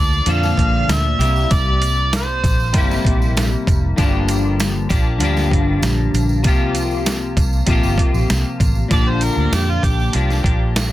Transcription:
Already playing: fingered electric bass D2, clean electric guitar F3 A#3 D4 A4, harmonica D5
0.13 tambourine
0.26 fingered electric bass F2, clean electric guitar A#2 D3 F3 A#3 D4 A4, closed hi-hat, tambourine
0.31 harmonica F5
0.43 snare, tambourine
0.57 fingered electric bass A#1, kick, closed hi-hat
0.88 fingered electric bass D2, harmonica E5, snare, closed hi-hat, tambourine
1.19 fingered electric bass C2, clean electric guitar A#3 E4 G4, closed hi-hat, tambourine
1.23 clean electric guitar C3 G3
1.36 tambourine
1.51 fingered electric bass C2, harmonica D5, kick, closed hi-hat, tambourine
1.82 closed hi-hat, tambourine
2.13 harmonica C5, snare, closed hi-hat, tambourine
2.44 fingered electric bass A#1, kick, closed hi-hat, tambourine
2.60 tambourine
2.73 fingered electric bass G1, clean electric guitar C3 G3 A#3, kick, closed hi-hat, tambourine
2.77 clean electric guitar E4 G4
2.91 snare, tambourine
3.04 fingered electric bass A#1, kick, closed hi-hat
3.22 tambourine
3.37 snare, closed hi-hat, tambourine
3.67 fingered electric bass F1, kick, closed hi-hat, tambourine
3.96 fingered electric bass G1, clean electric guitar G2 D3 F3 A#3 D4 G4, kick, closed hi-hat, tambourine
4.28 closed hi-hat, tambourine
4.60 snare, closed hi-hat, tambourine
4.89 fingered electric bass A#1, clean electric guitar F3 A#3 D4 G4, kick, closed hi-hat, tambourine
5.19 fingered electric bass D2, clean electric guitar G2 D3 F3 A#3, closed hi-hat, tambourine
5.23 clean electric guitar D4 G4
5.37 snare, tambourine
5.51 fingered electric bass G1, kick, closed hi-hat
5.82 fingered electric bass A#1, snare, closed hi-hat, tambourine
6.13 fingered electric bass A#1, closed hi-hat, tambourine
6.29 tambourine
6.43 fingered electric bass C2, clean electric guitar C3 F3 A#3 F4, kick, closed hi-hat, tambourine
6.48 clean electric guitar G4
6.75 closed hi-hat, tambourine
6.91 tambourine
7.06 snare, closed hi-hat, tambourine
7.37 fingered electric bass C2, kick, closed hi-hat, tambourine
7.53 tambourine
7.66 fingered electric bass A#1, clean electric guitar C3 F3 A#3, kick, closed hi-hat, tambourine
7.70 clean electric guitar F4 G4
7.83 fingered electric bass G1, tambourine
7.98 kick, closed hi-hat
8.14 fingered electric bass A#1, tambourine
8.30 fingered electric bass C2, snare, closed hi-hat, tambourine
8.60 fingered electric bass A1, kick, closed hi-hat, tambourine
8.75 tambourine
8.88 fingered electric bass A#1, clean electric guitar A#2 D3 F3 A#3, kick, closed hi-hat, tambourine
8.93 clean electric guitar D4 G4, harmonica D5
9.09 harmonica C5
9.21 harmonica A#4, closed hi-hat, tambourine
9.37 fingered electric bass D2
9.52 fingered electric bass F2, harmonica G4, snare, closed hi-hat, tambourine
9.70 harmonica F4
9.83 fingered electric bass A#1, harmonica G4, kick, closed hi-hat, tambourine
10.00 tambourine
10.13 fingered electric bass C2, clean electric guitar F3 A#3 D4 G4, closed hi-hat, tambourine
10.30 snare, tambourine
10.43 fingered electric bass A#1, clean electric guitar F3 A#3 D4 G4, kick, closed hi-hat
10.76 snare, closed hi-hat, tambourine

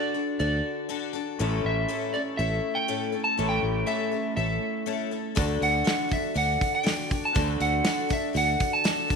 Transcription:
Already playing: twelve-string acoustic guitar D3 D4 F#4 A4, clean electric guitar D3 D4 F#4 A4, electric slide guitar D5
0.14 twelve-string acoustic guitar D4 F#4 A4
0.39 fingered electric bass D2, twelve-string acoustic guitar D3 D4 F#4 A4, electric slide guitar D5
0.89 twelve-string acoustic guitar D3 D4 F#4 A4
1.13 twelve-string acoustic guitar D4 F#4 A4
1.39 fingered electric bass A1, twelve-string acoustic guitar A2 A3 C#4 E4 A4
1.65 fingered electric bass A1, electric slide guitar E5
1.88 twelve-string acoustic guitar A2 A3 C#4 E4 A4
2.14 twelve-string acoustic guitar C#4 E4 A4, electric slide guitar D5
2.37 fingered electric bass A1, twelve-string acoustic guitar A3 C#4 E4 A4, electric slide guitar E5
2.75 electric slide guitar G5
2.88 twelve-string acoustic guitar A2 A3 C#4 E4 A4
3.12 twelve-string acoustic guitar C#4 E4 A4
3.24 electric slide guitar A5
3.37 fingered electric bass A1, twelve-string acoustic guitar A2 A3 C#4 E4 A4
3.49 electric slide guitar G5
3.63 fingered electric bass A1
3.86 twelve-string acoustic guitar A2 A3 C#4 E4 A4, electric slide guitar E5
4.12 twelve-string acoustic guitar C#4 E4 A4
4.37 fingered electric bass A1, twelve-string acoustic guitar A3 C#4 E4 A4, electric slide guitar E5
4.86 twelve-string acoustic guitar A2 A3 C#4 E4 A4
5.11 twelve-string acoustic guitar C#4 E4 A4
5.35 fingered electric bass D2, twelve-string acoustic guitar D3 D4 F#4 A4, kick, open hi-hat
5.61 fingered electric bass D2, electric slide guitar F#5, open hi-hat
5.84 twelve-string acoustic guitar D3 D4 F#4 A4, snare, open hi-hat
6.09 twelve-string acoustic guitar D4 F#4 A4, electric slide guitar E5, kick, open hi-hat
6.34 fingered electric bass D2, twelve-string acoustic guitar D3 D4 F#4 A4, electric slide guitar F#5, open hi-hat
6.61 kick, open hi-hat
6.75 electric slide guitar G5
6.83 twelve-string acoustic guitar D3 D4 F#4 A4, snare, open hi-hat
7.10 twelve-string acoustic guitar D4 F#4 A4, kick, open hi-hat
7.25 electric slide guitar A5
7.34 fingered electric bass D2, twelve-string acoustic guitar D3 D4 F#4 A4, kick, open hi-hat
7.60 fingered electric bass D2, electric slide guitar F#5, open hi-hat
7.84 twelve-string acoustic guitar D3 D4 F#4 A4, snare, open hi-hat
8.09 twelve-string acoustic guitar D4 F#4 A4, kick, open hi-hat
8.13 electric slide guitar E5
8.33 fingered electric bass D2, twelve-string acoustic guitar D3 D4 F#4 A4, open hi-hat
8.37 electric slide guitar F#5
8.60 kick, open hi-hat
8.73 electric slide guitar A5
8.84 twelve-string acoustic guitar D3 D4 F#4 A4, snare, open hi-hat
9.08 twelve-string acoustic guitar D4 F#4 A4, kick, open hi-hat

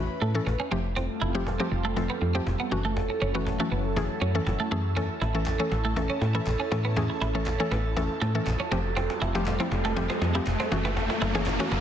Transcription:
Already playing: synth pluck E3 A3 C#4 F#4, analog synth pad C#4 E4 B4
0.22 fm bass A2, clean electric guitar A3, cajon slap
0.35 synth pluck E3 A3 C#4 A4
0.47 fm bass A1, muted clean electric guitar stroke, cajon bass, cajon slap
0.60 clean electric guitar C#4
0.71 fm bass F1, synth pluck F3 A3 C4 G4, analog synth pad G3 A3 C4 F4 A4, clean electric guitar C4
0.96 clean electric guitar C4, cajon bass, cajon slap
1.22 fm bass F1, clean electric guitar E4, cajon slap
1.35 synth pluck F3 A3 C4 G4, muted clean electric guitar stroke
1.47 cajon bass, cajon slap
1.60 synth pluck F3 A3 C4 G4, clean electric guitar C4
1.72 fm bass F1, muted clean electric guitar stroke
1.85 clean electric guitar A3
1.96 synth pluck F3 A3 C4 A4, cajon bass, cajon slap
2.10 clean electric guitar B3
2.22 fm bass F2, muted clean electric guitar stroke, cajon slap
2.35 synth pluck F3 A3 C4 G4, clean electric guitar C4
2.47 fm bass F1, cajon bass, cajon slap
2.60 clean electric guitar B3
2.71 fm bass F#1, synth pluck E3 A3 C#4 F#4, analog synth pad F#3 C#4 E4, muted clean electric guitar stroke
2.85 clean electric guitar A3
2.97 cajon bass, cajon slap
3.10 muted clean electric guitar stroke
3.22 fm bass F#1, clean electric guitar C#4, cajon slap
3.35 synth pluck E3 A3 C#4 F#4, clean electric guitar B3
3.47 muted clean electric guitar stroke, cajon bass, cajon slap
3.60 synth pluck E3 A3 C#4 F#4, clean electric guitar A3
3.72 fm bass F#1, clean electric guitar B3, cajon slap
3.96 synth pluck E3 A3 C#4 G#4, cajon bass, cajon slap
4.22 fm bass F#2, clean electric guitar C#4, cajon slap
4.35 synth pluck E3 A3 C#4 A4
4.47 fm bass F#1, muted clean electric guitar stroke, cajon bass, cajon slap
4.60 clean electric guitar A3
4.71 fm bass F#2, synth pluck E3 A3 C#4 G#4, clean electric guitar A3
4.96 synth pluck E3 A3 C#4 A4, analog synth pad C#4, clean electric guitar C#4, cajon bass, cajon slap, riser
5.22 fm bass A1, clean electric guitar E4, cajon slap
5.35 synth pluck E3 A3 C#4 A4, muted clean electric guitar stroke
5.46 cajon bass, cajon slap, clap
5.59 synth pluck E3 A3 C#4 A4, clean electric guitar C#4
5.72 fm bass A1, muted clean electric guitar stroke, cajon slap
5.85 clean electric guitar A3
5.96 synth pluck E3 A3 C#4 A4, cajon bass, cajon slap
6.10 clean electric guitar C#4
6.22 fm bass A2, muted clean electric guitar stroke, cajon slap
6.35 synth pluck E3 A3 C#4 A4, clean electric guitar E4
6.47 fm bass A1, cajon bass, cajon slap, clap
6.60 clean electric guitar C#4
6.72 fm bass A2, synth pluck E3 A3 C#4 A4, muted clean electric guitar stroke, cajon slap
6.85 clean electric guitar B3
6.96 synth pluck E3 A3 C#4 G#4, cajon bass, cajon slap
7.10 muted clean electric guitar stroke, cajon slap
7.22 fm bass A1, clean electric guitar E4, cajon slap
7.35 synth pluck E3 A3 C#4 A4, clean electric guitar C#4
7.46 muted clean electric guitar stroke, cajon bass, cajon slap, clap
7.60 synth pluck E3 A3 C#4 A4, clean electric guitar C#4, cajon slap
7.72 fm bass A1, clean electric guitar B3, cajon slap
7.85 cajon slap
7.97 synth pluck E3 A3 C#4 A4, cajon bass, cajon slap
8.10 cajon slap
8.22 fm bass A2, clean electric guitar A3, cajon slap
8.35 synth pluck E3 A3 C#4 A4, cajon slap
8.47 fm bass A1, muted clean electric guitar stroke, cajon bass, cajon slap, clap
8.60 clean electric guitar C#4, cajon slap
8.71 fm bass F1, synth pluck F3 A3 C4 G4, analog synth pad G3 A3 C4 F4, clean electric guitar C4, cajon slap
8.85 cajon slap
8.97 clean electric guitar C4, cajon bass, cajon slap
9.10 cajon slap
9.22 fm bass F1, clean electric guitar E4, cajon slap
9.35 synth pluck F3 A3 C4 G4, muted clean electric guitar stroke, cajon slap
9.46 cajon bass, cajon slap, clap
9.60 synth pluck F3 A3 C4 E4, clean electric guitar C4, cajon slap
9.72 fm bass F1, muted clean electric guitar stroke, cajon slap
9.85 clean electric guitar A3, cajon slap
9.96 synth pluck F3 A3 C4 G4, cajon bass, cajon slap
10.10 clean electric guitar C4, cajon slap
10.22 fm bass F2, muted clean electric guitar stroke, cajon slap
10.35 synth pluck F3 A3 C4 G4, clean electric guitar E4, cajon slap
10.47 fm bass F1, cajon bass, cajon slap, clap
10.60 clean electric guitar C4, cajon slap
10.72 fm bass F#1, synth pluck E3 A3 C#4 F#4, analog synth pad F#3 C#4 E4, muted clean electric guitar stroke, cajon slap
10.85 clean electric guitar B3, cajon slap
10.97 cajon bass, cajon slap
11.10 muted clean electric guitar stroke, cajon slap
11.22 fm bass F#1, clean electric guitar E4, cajon slap
11.35 synth pluck E3 A3 C#4 G#4, clean electric guitar C#4, cajon slap
11.46 muted clean electric guitar stroke, cajon bass, cajon slap, clap
11.60 synth pluck E3 A3 C#4 F#4, clean electric guitar C#4, cajon slap
11.72 fm bass F#1, clean electric guitar B3, cajon slap

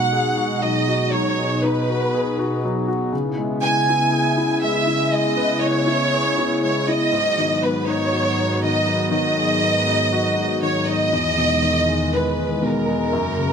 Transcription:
Already playing: grand piano B2 F#3 D#4 F#4, analog synth pad B2 G#3 D#4, violin section F#5
0.12 grand piano G#4
0.38 grand piano F#4
0.61 grand piano F#3, violin section D#5
0.88 grand piano F#4
1.11 grand piano F#3, analog synth pad B3, violin section C#5
1.39 grand piano G#4
1.62 grand piano D#4, violin section B4
1.90 grand piano F#4
2.15 grand piano G#4
2.39 grand piano F#4
2.65 grand piano F#3
2.88 grand piano F#4
3.13 grand piano C#3, analog synth pad C#3 B3 E4
3.38 grand piano G#3
3.63 grand piano B3, violin section G#5
3.90 grand piano E4
4.13 grand piano G#4
4.38 grand piano E4
4.63 grand piano G#3, violin section E5
4.87 grand piano E4
5.12 grand piano G#3, analog synth pad B3, violin section D#5
5.37 grand piano B4
5.61 grand piano B3, violin section C#5
5.87 grand piano E4
6.14 grand piano G#4
6.38 grand piano E4
6.63 grand piano G#3, violin section C#5
6.88 grand piano E4, violin section D#5
7.12 grand piano G#2, analog synth pad G#2 F#3 B3
7.37 grand piano D#3
7.63 grand piano B3, violin section B4
7.87 grand piano D#4, violin section C#5
8.13 grand piano F#4
8.38 grand piano D#4
8.63 grand piano D#3, violin section D#5
8.86 grand piano D#4
9.11 grand piano D#3, violin section D#5
9.37 grand piano G#4
9.62 grand piano B3
9.87 grand piano D#4
10.12 grand piano F#4
10.37 grand piano D#4
10.62 grand piano D#3, violin section C#5
10.88 grand piano D#4, violin section D#5
11.13 grand piano E2, analog synth pad E2 D#3 G#3
11.38 grand piano B2
11.62 grand piano D#3
11.89 grand piano G#3
12.14 grand piano B3, violin section B4
12.39 grand piano G#3
12.62 grand piano B2, violin section A#4
12.89 grand piano G#3
13.13 grand piano F#2, analog synth pad F#2 C#3 A#3
13.37 grand piano C#3

